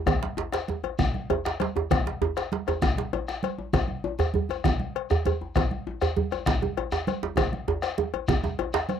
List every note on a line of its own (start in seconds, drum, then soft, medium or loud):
0.06 bombo rim medium
0.06 bombo low medium
0.06 cowbell medium
0.06 djembe slap soft
0.06 djembe tone medium
0.06 high conga soft
0.06 djembe bass medium
0.06 low conga medium
0.06 shekere medium
0.23 djembe slap medium
0.23 high conga medium
0.37 bombo rim soft
0.37 djembe slap medium
0.37 djembe tone medium
0.37 high conga soft
0.52 bombo rim medium
0.52 cowbell medium
0.52 djembe slap medium
0.52 high conga soft
0.52 shekere medium
0.68 high conga medium
0.68 djembe tone medium
0.84 bombo rim soft
0.84 cowbell soft
0.84 djembe slap soft
0.84 djembe tone medium
0.84 high conga soft
0.99 bombo rim medium
0.99 bombo low medium
0.99 low conga medium
0.99 djembe bass medium
0.99 shekere medium
1.14 high conga medium
1.30 cowbell medium
1.30 djembe slap soft
1.30 djembe tone medium
1.45 bombo rim medium
1.45 djembe slap medium
1.45 shekere soft
1.60 cowbell soft
1.60 djembe slap medium
1.60 high conga medium
1.60 shekere soft
1.76 bombo rim soft
1.76 djembe tone medium
1.91 bombo rim loud
1.91 bombo low loud
1.91 cowbell medium
1.91 djembe slap medium
1.91 low conga medium
1.91 djembe bass medium
1.91 shekere soft
2.06 djembe slap medium
2.06 high conga soft
2.21 djembe tone medium
2.21 djembe tone loud
2.37 bombo rim medium
2.37 cowbell soft
2.37 djembe slap medium
2.37 shekere soft
2.52 djembe slap medium
2.52 djembe slap soft
2.52 high conga medium
2.67 bombo rim soft
2.67 cowbell medium
2.67 high conga soft
2.67 djembe tone loud
2.67 djembe tone medium
2.67 shekere soft
2.82 bombo rim medium
2.82 bombo low medium
2.82 djembe slap medium
2.82 low conga medium
2.82 djembe bass medium
2.82 shekere medium
2.97 djembe slap medium
2.97 high conga medium
3.13 bombo rim soft
3.13 cowbell soft
3.13 djembe tone medium
3.28 bombo rim medium
3.28 djembe slap medium
3.28 shekere soft
3.43 cowbell soft
3.43 djembe slap soft
3.43 high conga medium
3.43 shekere soft
3.58 djembe tone medium
3.73 bombo rim medium
3.73 bombo low medium
3.73 cowbell medium
3.73 djembe slap medium
3.73 djembe bass medium
3.73 low conga medium
3.73 shekere medium
3.88 high conga medium
4.04 djembe tone medium
4.19 bombo rim medium
4.19 cowbell soft
4.19 djembe slap medium
4.19 djembe bass medium
4.19 shekere soft
4.34 djembe slap soft
4.34 high conga medium
4.34 djembe bass medium
4.49 bombo rim soft
4.49 cowbell medium
4.49 djembe tone medium
4.49 high conga soft
4.49 shekere soft
4.64 bombo rim medium
4.64 bombo low medium
4.64 djembe slap medium
4.64 low conga medium
4.64 djembe bass medium
4.64 shekere medium
4.80 high conga medium
4.95 bombo rim soft
4.95 cowbell medium
5.10 bombo rim medium
5.10 djembe slap medium
5.10 djembe bass medium
5.10 shekere soft
5.25 cowbell soft
5.25 djembe slap soft
5.25 high conga medium
5.25 djembe bass medium
5.25 shekere soft
5.41 djembe tone medium
5.55 bombo rim medium
5.55 bombo low medium
5.55 cowbell medium
5.55 djembe slap medium
5.55 low conga medium
5.55 djembe bass medium
5.55 shekere medium
5.71 high conga medium
5.87 djembe tone medium
6.01 bombo rim medium
6.01 cowbell soft
6.01 djembe slap medium
6.01 djembe bass medium
6.01 shekere soft
6.17 djembe slap soft
6.17 high conga medium
6.17 djembe bass medium
6.31 bombo rim soft
6.31 cowbell medium
6.31 djembe tone medium
6.31 high conga soft
6.31 shekere soft
6.46 bombo rim medium
6.46 bombo low medium
6.46 djembe slap medium
6.46 low conga medium
6.46 djembe bass medium
6.46 shekere medium
6.62 djembe tone medium
6.62 high conga medium
6.77 bombo rim soft
6.77 cowbell medium
6.77 djembe tone medium
6.92 bombo rim medium
6.92 djembe slap medium
6.92 djembe tone medium
6.92 shekere soft
7.07 cowbell medium
7.07 djembe slap soft
7.07 high conga medium
7.07 shekere soft
7.23 djembe slap medium
7.23 djembe tone medium
7.37 bombo rim loud
7.37 bombo low medium
7.37 cowbell medium
7.37 high conga soft
7.37 djembe tone medium
7.37 low conga medium
7.37 djembe bass medium
7.37 shekere medium
7.53 bombo rim soft
7.53 djembe slap soft
7.53 high conga medium
7.68 bombo rim soft
7.68 djembe tone medium
7.68 djembe tone loud
7.82 bombo rim medium
7.82 cowbell soft
7.82 djembe slap medium
7.82 high conga soft
7.82 shekere soft
7.98 bombo rim soft
7.98 high conga medium
7.98 djembe tone medium
8.14 cowbell medium
8.14 djembe tone medium
8.28 bombo rim medium
8.28 bombo low medium
8.28 high conga soft
8.28 djembe tone medium
8.28 djembe bass medium
8.28 low conga medium
8.28 shekere medium
8.43 high conga medium
8.43 djembe tone medium
8.43 shekere soft
8.59 bombo rim soft
8.59 cowbell medium
8.59 high conga soft
8.59 djembe tone medium
8.73 bombo rim medium
8.73 djembe slap loud
8.73 djembe slap medium
8.73 high conga soft
8.73 shekere soft
8.89 cowbell soft
8.89 high conga medium
8.89 shekere soft